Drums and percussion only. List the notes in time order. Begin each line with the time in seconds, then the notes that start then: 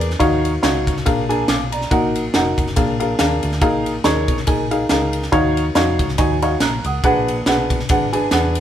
0.01 ride
0.10 snare
0.20 kick, ride
0.45 ride
0.63 snare, ride
0.87 kick, ride
0.97 snare
1.06 kick, ride
1.30 ride
1.48 snare, ride
1.72 ride
1.81 snare
1.91 kick, ride
2.16 ride
2.34 snare, ride
2.58 kick, ride
2.67 snare
2.76 kick, ride
3.00 ride
3.19 snare, ride
3.43 ride
3.52 snare
3.61 kick, ride
3.86 ride
4.04 snare, ride
4.28 kick, ride
4.37 snare
4.47 kick, ride
4.71 ride
4.89 snare, ride
5.13 ride
5.22 snare
5.32 kick, ride
5.57 ride
5.75 snare, ride
5.99 kick, ride
6.08 snare
6.18 kick, ride
6.42 ride
6.60 snare, ride
6.84 ride
7.04 kick, ride
7.28 ride
7.46 snare, ride
7.70 kick, ride
7.80 snare
7.89 kick, ride
8.13 ride
8.31 snare, ride
8.55 ride